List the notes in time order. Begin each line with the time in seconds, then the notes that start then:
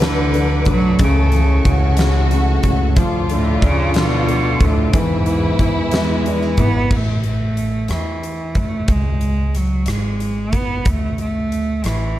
Already playing: D2 D3 F#3 F#4 A4 B4 D5 F#5 D6
0.00 D3 A3, snare, closed hi-hat
0.34 D3 D4, closed hi-hat
0.65 B1 D3 F#3 A3, kick, closed hi-hat
0.99 C#2 C#3 E3 A4 C#5 E5 C#6, kick, closed hi-hat
1.03 C#3
1.32 C#3 E3, closed hi-hat
1.65 C#2 C#3 C#4 F#4, kick, closed hi-hat
1.97 C#3 E3, snare, closed hi-hat
2.31 C#3 A3, closed hi-hat
2.63 C#2 C#3 E3, kick, closed hi-hat
2.96 D2 F3 F4 D5 F5 D6, kick, closed hi-hat
3.29 D3 F3, closed hi-hat
3.34 A2
3.62 D2 C#3 D4, kick, closed hi-hat
3.94 D3 F3, snare, closed hi-hat
3.99 B2
4.28 D3 A3, closed hi-hat
4.60 D2 D3 F3, kick, closed hi-hat
4.65 A2
4.93 E2 E3 E4 G#4 B4 E5 B5, kick, closed hi-hat
4.97 G#2
5.26 E3 B3, closed hi-hat
5.59 E2 E3 G#4, kick, closed hi-hat
5.91 E3 B3, snare, closed hi-hat
5.96 G#3
6.26 E3 D4, closed hi-hat
6.42 E4
6.57 G#1 E3 B3 E4, kick, closed hi-hat
6.91 A1, kick, crash
6.96 A3
7.24 A3, closed hi-hat
7.57 closed hi-hat
7.88 E2 E3, cross-stick, closed hi-hat
8.23 closed hi-hat
8.55 A3, kick, closed hi-hat
8.88 C#2 G#3, kick, closed hi-hat
9.21 closed hi-hat
9.55 F#3, cross-stick, closed hi-hat
9.86 G#1 G#3, cross-stick, closed hi-hat
10.20 closed hi-hat
10.53 B3, kick, closed hi-hat
10.85 D2 A3, kick, closed hi-hat
11.18 A3, closed hi-hat
11.52 closed hi-hat
11.84 A1 E3, cross-stick, closed hi-hat